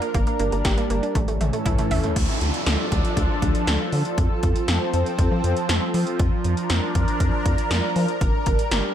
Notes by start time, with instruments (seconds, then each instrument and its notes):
Already playing: analog synth pad F3 D4 A#4
0.02 synth arpeggio sound A#3, closed hi-hat
0.14 analog synth bass G1, analog synth pad G3 D4, synth arpeggio sound A#3, kick, closed hi-hat
0.27 synth arpeggio sound A#3, closed hi-hat
0.39 analog synth bass G1, synth arpeggio sound A#3, closed hi-hat
0.52 analog synth bass G1, synth arpeggio sound A#3, closed hi-hat
0.65 analog synth bass G1, synth arpeggio sound G4, kick, snare, closed hi-hat
0.78 synth arpeggio sound A#3, closed hi-hat
0.90 analog synth bass G1, synth arpeggio sound A#3, closed hi-hat
1.03 synth arpeggio sound D4, closed hi-hat
1.15 analog synth bass A1, analog synth pad E3 C#4 A4, synth arpeggio sound A3, kick, closed hi-hat, high tom
1.28 analog synth bass A1, synth arpeggio sound A3, closed hi-hat
1.41 analog synth bass A1, synth arpeggio sound A3, closed hi-hat, mid tom
1.53 synth arpeggio sound A3, closed hi-hat
1.66 analog synth bass C#2, synth arpeggio sound E4, kick, closed hi-hat, mid tom
1.78 synth arpeggio sound A3, closed hi-hat, mid tom
1.91 analog synth bass A1, synth arpeggio sound E5, floor tom, open hi-hat
2.04 synth arpeggio sound A3, closed hi-hat, floor tom
2.16 analog synth bass D2, analog synth pad F3 D4 A4, kick, closed hi-hat, crash, downlifter
2.41 analog synth bass D2, closed hi-hat
2.54 closed hi-hat
2.66 analog synth bass D2, snare, closed hi-hat
2.92 analog synth bass D2, kick, closed hi-hat
3.05 closed hi-hat
3.17 analog synth bass D2, kick, closed hi-hat
3.42 analog synth bass D2, kick, closed hi-hat
3.55 closed hi-hat
3.67 analog synth bass D2, snare, closed hi-hat
3.92 analog synth bass D3, open hi-hat
4.05 closed hi-hat
4.18 analog synth bass F2, analog synth pad C4, kick, closed hi-hat
4.43 analog synth bass F2, kick, closed hi-hat
4.56 closed hi-hat
4.68 analog synth bass F2, snare, closed hi-hat
4.94 analog synth bass F2, closed hi-hat
5.06 closed hi-hat
5.19 analog synth bass F2, kick, closed hi-hat
5.31 analog synth bass F3
5.44 analog synth bass F2, closed hi-hat
5.57 closed hi-hat
5.69 analog synth bass F2, snare, closed hi-hat
5.94 analog synth bass F3, open hi-hat
6.07 closed hi-hat
6.19 analog synth bass F2, analog synth pad D4 A#4, kick, closed hi-hat
6.44 analog synth bass F2, closed hi-hat
6.57 closed hi-hat
6.70 analog synth bass F2, snare, closed hi-hat
6.95 analog synth bass F2, kick, closed hi-hat
7.08 closed hi-hat
7.20 analog synth bass F2, kick, closed hi-hat
7.46 analog synth bass F2, kick, closed hi-hat
7.58 closed hi-hat
7.71 analog synth bass F2, snare, closed hi-hat
7.96 analog synth bass F3, open hi-hat
8.08 closed hi-hat
8.21 analog synth bass G1, analog synth pad G3 D4, kick, closed hi-hat
8.46 analog synth bass G1, kick, closed hi-hat
8.59 closed hi-hat
8.71 analog synth bass G1, snare, closed hi-hat